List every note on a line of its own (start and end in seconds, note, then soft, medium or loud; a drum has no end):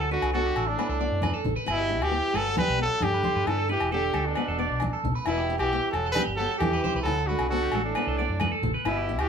0.00 0.16 D2 medium
0.00 0.11 F#3 medium
0.00 0.11 A4 medium
0.11 0.32 D3 medium
0.11 0.28 D4 medium
0.11 0.32 F#4 medium
0.11 0.32 B4 medium
0.22 0.50 C2 medium
0.22 low agogo medium
0.34 0.71 D3 medium
0.34 0.51 B3 medium
0.34 0.69 F#4 medium
0.34 0.44 A4 medium
0.46 0.55 G4 medium
0.56 0.74 A1 medium
0.56 0.77 A4 medium
0.56 muted conga soft
0.56 low agogo medium
0.68 1.46 A2 medium
0.68 1.45 D4 medium
0.78 0.95 B3 medium
0.78 0.89 B4 medium
0.78 muted conga soft
0.78 low agogo medium
0.89 1.08 C2 medium
0.89 1.00 A4 medium
1.00 1.17 B3 medium
1.00 1.22 D5 medium
1.00 muted conga soft
1.12 1.30 F#2 medium
1.22 1.40 D4 medium
1.22 1.33 B4 medium
1.22 high conga medium
1.22 low agogo medium
1.34 1.55 A4 medium
1.45 1.55 A1 medium
1.45 1.62 D4 medium
1.45 low conga medium
1.56 1.66 B4 medium
1.66 2.01 G1 medium
1.66 2.04 E4 medium
1.66 1.78 B4 medium
1.66 muted steel-string acoustic guitar stroke medium
1.66 muted conga soft
1.66 low agogo medium
1.72 2.06 B2 medium
1.78 2.00 G4 medium
1.89 2.06 D4 medium
2.01 2.20 D2 medium
2.01 2.40 E3 medium
2.01 2.11 F#4 medium
2.01 2.37 G4 medium
2.01 low agogo medium
2.11 2.28 B3 medium
2.11 2.33 G4 medium
2.33 2.53 G1 medium
2.33 2.50 A3 medium
2.33 2.58 A4 loud
2.33 2.45 B4 medium
2.33 muted conga soft
2.33 low agogo medium
2.38 2.59 F#3 medium
2.46 2.56 A4 medium
2.56 2.73 B3 medium
2.56 2.78 G4 medium
2.56 2.78 B4 loud
2.56 muted conga soft
2.56 high conga medium
2.56 low agogo medium
2.60 2.79 G3 medium
2.68 2.87 B1 medium
2.78 3.05 F#3 medium
2.78 2.96 B3 medium
2.78 3.05 A4 loud
2.78 muted conga soft
3.01 3.21 G2 medium
3.01 3.48 D3 medium
3.01 3.19 D4 medium
3.01 3.49 G4 medium
3.01 high conga medium
3.01 low agogo medium
3.14 3.24 B4 medium
3.23 3.41 D4 medium
3.23 3.35 C5 medium
3.23 high conga medium
3.36 3.45 G2 medium
3.36 3.57 B4 medium
3.47 3.75 G2 medium
3.47 3.69 D3 medium
3.47 3.64 E4 medium
3.47 3.69 A4 loud
3.47 muted conga soft
3.47 low agogo medium
3.59 3.69 A4 medium
3.69 3.90 E3 medium
3.69 3.86 D4 medium
3.69 3.91 G4 medium
3.69 3.91 B4 medium
3.80 4.09 E1 medium
3.80 low agogo medium
3.92 4.28 D3 medium
3.92 4.09 B3 medium
3.92 4.28 G4 medium
3.92 4.03 A4 medium
4.03 4.13 G4 medium
4.14 4.33 D2 medium
4.14 4.35 A4 medium
4.14 muted steel-string acoustic guitar stroke medium
4.14 muted conga soft
4.14 low agogo medium
4.26 5.04 B2 medium
4.26 5.04 D4 medium
4.35 4.54 B3 medium
4.35 4.47 B4 medium
4.35 muted conga soft
4.35 low agogo medium
4.48 4.67 E1 medium
4.48 4.58 A4 medium
4.59 4.75 B3 medium
4.59 4.80 D5 medium
4.59 muted conga soft
4.70 4.89 B1 medium
4.80 4.98 D4 medium
4.80 high conga medium
4.80 low agogo medium
4.93 5.14 A4 medium
5.04 5.13 B1 medium
5.04 5.21 D4 medium
5.04 low conga medium
5.15 5.26 B4 medium
5.25 5.59 E1 medium
5.25 5.58 B2 medium
5.25 5.57 E4 medium
5.25 5.43 E4 medium
5.25 5.38 B4 medium
5.25 muted conga soft
5.25 low agogo medium
5.38 5.59 G4 medium
5.50 5.66 D4 medium
5.59 5.78 B1 medium
5.59 5.91 E3 medium
5.59 5.70 F#4 medium
5.59 5.90 G4 medium
5.59 low agogo medium
5.72 5.89 B3 medium
5.72 5.93 G4 medium
5.91 6.12 E1 medium
5.91 6.14 F#3 medium
5.91 6.11 A4 medium
5.91 muted conga soft
5.91 low agogo medium
6.06 6.16 A4 medium
6.12 6.25 G3 medium
6.12 6.23 B4 loud
6.12 low agogo medium
6.16 6.34 B3 medium
6.16 6.38 G4 medium
6.16 muted conga soft
6.16 high conga medium
6.27 6.46 G1 medium
6.36 6.58 F#3 medium
6.36 6.56 B3 medium
6.36 6.50 G4 medium
6.36 6.58 A4 loud
6.36 muted conga soft
6.51 6.72 A4 medium
6.58 6.79 E2 medium
6.58 7.02 E3 medium
6.58 7.01 G4 medium
6.58 high conga medium
6.58 low agogo medium
6.63 6.79 D4 medium
6.73 6.83 B4 medium
6.84 6.94 C5 medium
6.84 muted steel-string acoustic guitar stroke medium
6.84 high conga medium
6.94 7.04 C2 medium
6.94 7.17 B4 medium
7.02 7.34 D2 loud
7.02 7.28 F#3 medium
7.02 7.28 A4 loud
7.02 low agogo medium
7.06 7.23 E4 medium
7.06 muted conga soft
7.18 7.28 A4 medium
7.27 7.48 D3 medium
7.27 7.46 A3 medium
7.27 7.49 F#4 medium
7.27 7.50 B4 medium
7.39 7.67 C2 medium
7.39 low agogo medium
7.49 7.81 D3 medium
7.49 7.68 B3 medium
7.49 7.81 F#4 loud
7.49 7.62 A4 medium
7.63 7.73 G4 medium
7.72 7.92 A1 medium
7.72 7.91 A3 medium
7.72 7.95 A4 medium
7.72 muted conga soft
7.72 low agogo medium
7.83 8.58 A2 medium
7.83 8.59 D4 medium
7.95 8.13 B3 medium
7.95 8.06 B4 medium
7.95 muted conga soft
7.95 low agogo medium
8.07 8.26 C2 medium
8.07 8.18 A4 medium
8.18 8.35 B3 medium
8.18 8.40 D5 medium
8.18 muted conga soft
8.29 8.48 F#2 medium
8.40 8.58 A3 medium
8.40 8.51 B4 medium
8.40 high conga medium
8.40 low agogo medium
8.52 8.73 A4 medium
8.62 8.72 A1 medium
8.62 8.80 D4 medium
8.62 low conga medium
8.74 8.84 B4 medium
8.85 9.19 G1 medium
8.85 9.23 B2 medium
8.85 9.02 E4 medium
8.85 9.21 E4 medium
8.85 8.96 B4 medium
8.85 muted conga soft
8.85 low agogo medium
8.97 9.18 G4 medium
9.09 9.25 D4 medium
9.19 9.29 D2 medium
9.19 9.29 E3 medium
9.19 9.29 F#4 medium
9.19 9.29 G4 medium
9.19 low agogo medium